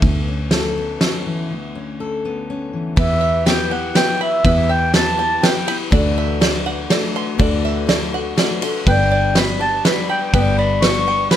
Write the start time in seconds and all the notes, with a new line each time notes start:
Already playing: B3 A4
0.02 D2, kick, ride
0.28 C#4
0.51 A4, snare, ride
0.78 B3
1.01 C#4, snare, ride
1.26 E3
1.50 D2
1.75 C#4
2.00 A4
2.25 B3
2.50 C#4
2.73 E3
2.96 E2 E3 B3 E4 G4 B4 E5, kick, ride
3.21 E5
3.45 E3 B3 E4 G4 B4 G5, snare, ride
3.69 B3 E4 G4 F#5 G5
3.94 E3 B3 E4 G4 B4 G5, snare, ride
4.21 E5 B5
4.44 E2 E3 B3 E4 G4 B4, kick, ride
4.69 E5 G5
4.93 E3 B3 E4 G4 B4 A5, snare, ride
5.17 B3 E4 G4 G5
5.41 E3 B3 E4 G4 B4 G5, snare, ride
5.66 B3 E4 G4 B5, ride
5.90 D2 D3 E3 A3 D4 F#4 D5, kick, ride
6.18 E5
6.40 E3 A3 D4 F#4 D5, snare, ride
6.66 F#5
6.90 E3 A3 D4 F#4 D5, snare, ride
7.16 C6
7.38 D2 D3 E3 A3 D4 F#4 D5, kick, ride
7.65 E5
7.87 E3 A3 D4 F#4 D5, snare, ride
8.12 A3 D4 F#4 F#5
8.36 E3 A3 D4 F#4 D5, snare, ride
8.61 A3 D4 F#4 C6, ride
8.86 G1 G2 D3 G3 B3 D4 G4 B4 G5, kick, ride
9.12 D5
9.35 G3 B3 D4 G4 B4 B5, snare, ride
9.59 G3 B3 D4 G4 G5 A5
9.85 G3 B3 D4 G4 B4 B5, snare, ride
10.09 G5 B5
10.33 G1 G2 D3 G3 B3 D4 G4 B4 G5, kick, ride
10.58 D5 B5
10.82 G3 B3 D4 G4 B4 C#6, snare, ride
11.08 G5
11.31 G3 B3 D4 G4 B4 B5, snare, ride